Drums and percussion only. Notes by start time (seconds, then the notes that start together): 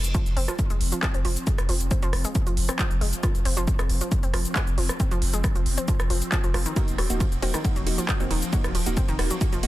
0.04 closed hi-hat, shaker
0.15 kick, closed hi-hat, shaker
0.26 closed hi-hat, shaker
0.37 open hi-hat
0.48 cross-stick, closed hi-hat, shaker
0.59 kick, closed hi-hat, shaker
0.70 closed hi-hat, shaker
0.81 open hi-hat
0.92 closed hi-hat, shaker
1.03 kick, cross-stick, clap, closed hi-hat, shaker
1.14 closed hi-hat, shaker
1.25 open hi-hat
1.36 closed hi-hat, shaker
1.47 kick, closed hi-hat, shaker
1.58 cross-stick, closed hi-hat, shaker
1.69 open hi-hat
1.80 closed hi-hat, shaker
1.91 kick, closed hi-hat, shaker
2.02 closed hi-hat, shaker
2.13 cross-stick, open hi-hat
2.25 closed hi-hat, shaker
2.35 kick, closed hi-hat, shaker
2.47 closed hi-hat, shaker
2.57 open hi-hat
2.69 cross-stick, closed hi-hat, shaker
2.79 kick, clap, closed hi-hat, shaker
2.91 closed hi-hat, shaker
3.01 open hi-hat
3.13 closed hi-hat, shaker
3.23 kick, cross-stick, closed hi-hat, shaker
3.35 closed hi-hat, shaker
3.45 open hi-hat
3.57 closed hi-hat, shaker
3.67 kick, closed hi-hat, shaker
3.79 cross-stick, closed hi-hat, shaker
3.90 open hi-hat
4.01 closed hi-hat, shaker
4.12 kick, closed hi-hat, shaker
4.23 closed hi-hat, shaker
4.34 cross-stick, open hi-hat
4.45 closed hi-hat, shaker
4.56 kick, clap, closed hi-hat, shaker
4.67 closed hi-hat, shaker
4.78 open hi-hat
4.89 cross-stick, closed hi-hat, shaker
5.00 kick, closed hi-hat, shaker
5.11 closed hi-hat, shaker
5.22 open hi-hat
5.33 closed hi-hat, shaker
5.44 kick, cross-stick, closed hi-hat, shaker
5.55 closed hi-hat, shaker
5.66 open hi-hat
5.78 closed hi-hat, shaker
5.88 kick, closed hi-hat, shaker
6.00 cross-stick, closed hi-hat, shaker
6.10 open hi-hat
6.22 closed hi-hat, shaker
6.32 kick, clap, closed hi-hat, shaker
6.44 closed hi-hat, shaker
6.54 cross-stick, open hi-hat
6.66 closed hi-hat, shaker
6.76 kick, closed hi-hat, ride, shaker
6.88 closed hi-hat, shaker
6.98 cross-stick, open hi-hat, ride
7.10 closed hi-hat, shaker
7.20 kick, closed hi-hat, ride, shaker
7.32 closed hi-hat, shaker
7.42 open hi-hat, ride
7.54 cross-stick, closed hi-hat, shaker
7.65 kick, closed hi-hat, ride, shaker
7.76 closed hi-hat, shaker
7.87 open hi-hat, ride
7.98 closed hi-hat, shaker
8.09 kick, cross-stick, clap, closed hi-hat, ride, shaker
8.20 closed hi-hat, shaker
8.31 open hi-hat, ride
8.42 closed hi-hat, shaker
8.53 kick, closed hi-hat, ride, shaker
8.64 cross-stick, closed hi-hat, shaker
8.75 open hi-hat, ride
8.86 closed hi-hat, shaker
8.97 kick, closed hi-hat, ride, shaker
9.08 closed hi-hat, shaker
9.19 cross-stick, open hi-hat, ride
9.30 closed hi-hat, shaker
9.41 kick, closed hi-hat, ride, shaker
9.53 closed hi-hat, shaker
9.63 open hi-hat, ride